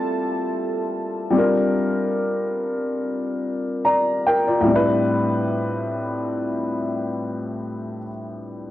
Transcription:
Already playing: G3 C4 E4 F4 A4 E5 A5 C6
1.31 G3 C4 D4
1.36 F4 A#4
3.85 D5 A#5
4.26 A#4 G5
4.47 F4 D5
4.61 A2 G3
4.67 C4 D4
4.73 E4 B4

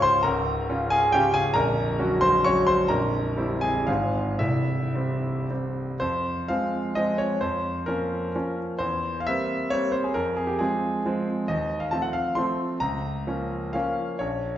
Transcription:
Already playing: C#1 C#2 C#3 C#4 F4
0.02 C5 C6
0.23 C#1 C#2 A#4 A#5
0.69 C#3 C#4 F4
0.90 G#4 G#5
1.12 C#3 C#4 F4 G4 G5
1.34 G#4 G#5
1.54 A#0 A#1 A#4 A#5
1.99 F#3 C#4 F#4
2.21 C5 C6
2.44 F#3 C#4 F#4 C#5 C#6
2.67 C5 C6
2.88 A#0 A#1 A#4 A#5
3.37 G3 C4 E4
3.61 G#4 G#5
3.87 G#1 G#2 G#3 C4 F4 F5
4.39 C1 C2 E4 E5
4.95 G3 C4
5.50 G3 C4
6.00 F2 C5
6.48 F3 G#3 C4 F5
6.95 F3 G#3 C4 D#5
7.18 C#5
7.41 F2 C5
7.86 F3 A#3 C#4 A#4
8.35 F3 A#3 C#4
8.79 E2 C5
9.20 F5
9.27 G3 A#3 C4 E5
9.70 G3 A#3 C4 C#5
9.92 C5
10.04 G#4
10.14 F2 A#4
10.37 G#4
10.47 G4
10.59 F3 G#3 C4 G#4
11.05 F3 G#3 C4
11.48 D#2 D#5
11.80 F5
11.91 F3 A3 C4 A5
12.02 F#5
12.13 F5
12.35 F3 A3 C4 C6
12.80 C#2 A#5
13.27 F3 A#3 C#4
13.73 F3 A#3 C#4 F5
14.19 A#1 C#5

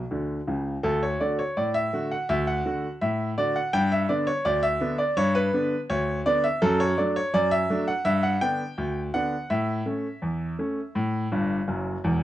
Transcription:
Already playing: A4 C#5
0.11 D2 D3
0.47 C#2 C#3
0.83 D2 A4
1.03 C#5
1.20 D3 A3 F#4 D5
1.39 C#5
1.57 A2 D5
1.74 E5
1.93 D3 A3 F#4
2.11 F#5
2.29 D2 E5
2.47 F#5
2.65 D3 A3 F#4
3.01 A2 E5
3.38 D3 A3 F#4 D5
3.56 F#5
3.73 G2 G5
3.92 E5
4.09 D3 B3 D4 D5
4.27 C#5
4.45 D2 D5
4.63 E5
4.80 D3 B3 D4
4.98 D5
5.17 G2 C#5
5.35 B4
5.53 D3 B3 D4
5.90 D2 C#5
6.26 D3 B3 D4 D5
6.44 E5
6.62 F#2 A4
6.80 C#5
6.98 F#3 A3 D4 D5
7.16 C#5
7.34 F#2 D5
7.51 E5
7.70 F#3 A3 D4
7.88 F#5
8.05 G2 E5
8.23 F#5
8.41 D3 B3 D4 G5
8.78 D2
9.14 D3 B3 D4 F#5
9.50 A2 E5
9.86 A3 C#4
10.22 E2
10.59 A3 C#4
10.95 A2
11.32 G1 G2
11.68 F#1 F#2
12.04 E1 E2

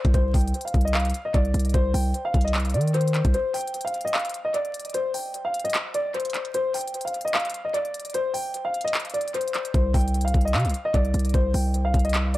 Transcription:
Already playing: C5
0.05 C2, kick, closed hi-hat
0.14 C2 C5, kick, closed hi-hat
0.34 C2 G5, kick, closed hi-hat, open hi-hat
0.41 closed hi-hat
0.48 closed hi-hat
0.54 closed hi-hat
0.61 closed hi-hat
0.65 F5, closed hi-hat
0.74 C2, kick, closed hi-hat
0.81 D#5, closed hi-hat
0.88 closed hi-hat
0.94 F5, clap, closed hi-hat
1.00 closed hi-hat
1.05 closed hi-hat
1.10 closed hi-hat
1.14 closed hi-hat
1.25 D#5
1.34 C2 D5, kick, closed hi-hat
1.45 closed hi-hat
1.54 C2, closed hi-hat
1.60 closed hi-hat
1.65 closed hi-hat
1.69 closed hi-hat
1.74 C2 C5, kick, closed hi-hat
1.94 C2 G5, open hi-hat
2.14 closed hi-hat
2.25 F5
2.34 C2, kick, closed hi-hat
2.41 D#5, closed hi-hat
2.48 closed hi-hat
2.54 clap, closed hi-hat
2.60 closed hi-hat
2.65 closed hi-hat
2.70 closed hi-hat
2.74 D#3 D5, closed hi-hat
2.81 closed hi-hat
2.88 closed hi-hat
2.94 C5, closed hi-hat
3.01 closed hi-hat
3.08 closed hi-hat
3.14 clap, closed hi-hat
3.25 C2, kick, closed hi-hat
3.34 C5, closed hi-hat
3.54 G5, closed hi-hat, open hi-hat
3.61 closed hi-hat
3.67 closed hi-hat
3.74 closed hi-hat
3.81 F5, closed hi-hat
3.88 closed hi-hat
3.94 closed hi-hat
4.01 D#5, closed hi-hat
4.08 closed hi-hat
4.14 F5, clap, closed hi-hat
4.19 closed hi-hat
4.25 closed hi-hat
4.29 closed hi-hat
4.34 closed hi-hat
4.45 D#5
4.54 D5, closed hi-hat
4.65 closed hi-hat
4.74 closed hi-hat
4.80 closed hi-hat
4.85 closed hi-hat
4.90 closed hi-hat
4.94 C5, closed hi-hat
5.14 G5, open hi-hat
5.34 closed hi-hat
5.45 F5
5.54 closed hi-hat
5.60 closed hi-hat
5.64 D#5, closed hi-hat
5.70 closed hi-hat
5.74 clap, closed hi-hat
5.94 D5, closed hi-hat
6.14 C5, closed hi-hat
6.20 closed hi-hat
6.25 closed hi-hat
6.30 closed hi-hat
6.34 clap, closed hi-hat
6.45 closed hi-hat
6.54 C5, closed hi-hat
6.74 G5, closed hi-hat, open hi-hat
6.81 closed hi-hat
6.88 closed hi-hat
6.94 closed hi-hat
7.01 F5, closed hi-hat
7.08 closed hi-hat
7.14 closed hi-hat
7.21 D#5, closed hi-hat
7.28 closed hi-hat
7.34 F5, clap, closed hi-hat
7.40 closed hi-hat
7.45 closed hi-hat
7.50 closed hi-hat
7.54 closed hi-hat
7.65 D#5
7.74 D5, closed hi-hat
7.85 closed hi-hat
7.94 closed hi-hat
8.00 closed hi-hat
8.05 closed hi-hat
8.10 closed hi-hat
8.14 C5, closed hi-hat
8.34 G5, open hi-hat
8.54 closed hi-hat
8.65 F5
8.74 closed hi-hat
8.81 D#5, closed hi-hat
8.88 closed hi-hat
8.94 clap, closed hi-hat
9.00 closed hi-hat
9.05 closed hi-hat
9.10 closed hi-hat
9.14 D5, closed hi-hat
9.21 closed hi-hat
9.28 closed hi-hat
9.34 C5, closed hi-hat
9.41 closed hi-hat
9.48 closed hi-hat
9.54 clap, closed hi-hat
9.65 closed hi-hat
9.74 C2 C5, kick, closed hi-hat
9.94 C2 G5, kick, closed hi-hat, open hi-hat
10.01 closed hi-hat
10.08 closed hi-hat
10.14 closed hi-hat
10.21 F5, closed hi-hat
10.28 closed hi-hat
10.34 C2, kick, closed hi-hat
10.41 closed hi-hat
10.45 D#5, closed hi-hat
10.54 C3 F5, clap, closed hi-hat
10.60 closed hi-hat
10.65 C2, closed hi-hat
10.70 closed hi-hat
10.74 closed hi-hat
10.85 D#5
10.94 C2 D5, kick, closed hi-hat
11.05 closed hi-hat
11.14 C2, closed hi-hat
11.19 closed hi-hat
11.25 closed hi-hat
11.29 closed hi-hat
11.34 C2 C5, kick, closed hi-hat
11.54 C2 G5, open hi-hat
11.74 closed hi-hat
11.85 F5
11.94 C2, kick, closed hi-hat
11.99 closed hi-hat
12.05 D#5, closed hi-hat
12.09 closed hi-hat
12.14 clap, closed hi-hat
12.34 D5, closed hi-hat

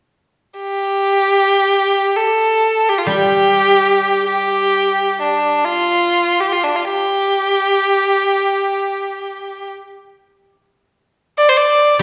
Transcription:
0.59 G4
2.16 A4
2.89 G4
2.98 F4
3.07 G3 G4
4.27 G4
5.21 D4
5.65 F4
6.40 G4
6.52 F4
6.64 D4
6.76 F4
6.85 G4
11.38 D5
11.49 C5
11.56 D5
11.99 G3

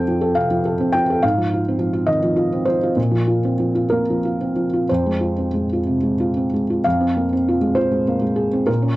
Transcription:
Already playing: F2 F3 C4 A4 G5
0.08 F3
0.21 A4
0.35 C3 F5
0.51 F3
0.65 A4
0.80 C4
0.93 F3 G5
1.10 A4
1.23 G#2 F5
1.38 F3
1.54 F4
1.68 C4
1.79 F3
1.93 F4
2.07 D#3 D#5
2.23 F3
2.36 F4
2.53 C4
2.65 F3 C5
2.83 F4
2.97 A#2
3.11 F3
3.27 F4
3.45 C4
3.60 F3
3.75 F4
3.90 A#3 A#4
4.10 F3
4.25 F4
4.41 C4
4.56 F3
4.73 F4
4.89 F2 C5
5.06 G#3
5.21 F4
5.38 C4
5.54 G#3
5.73 F4
5.87 C3
6.03 G#3
6.20 F4
6.37 C4
6.53 G#3
6.70 F4
6.84 F2 F5
7.01 C4
7.17 A#3
7.33 C4
7.48 F4
7.61 G#3
7.75 F4 C5
7.91 G#3
8.08 A#3
8.22 G#3
8.36 G#4
8.53 C4
8.66 A#2 A#4
8.82 C#4

